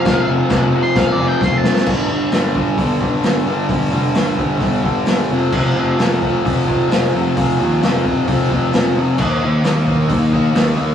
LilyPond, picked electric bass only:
\new Staff \with { instrumentName = "Picked electric bass" } { \clef bass \time 4/4 \key g \minor \tempo 4 = 131 f,,8 f,,8 f,,4 f,,8 f,,8 f,,4 | g,,8 g,,8 g,,4 g,,4 g,,8 g,,8 | g,,8 f,,8 g,,8 g,,8 g,,8 g,,8 g,,8 f,,8 | f,,8 f,,8 f,,4 f,,4 f,,8 f,,8 |
f,,8 ees,8 f,,8 f,,8 f,,8 f,,8 f,,8 f,,8 | ees,8 ees,8 ees,4 ees,4 ees,8 ees,8 | }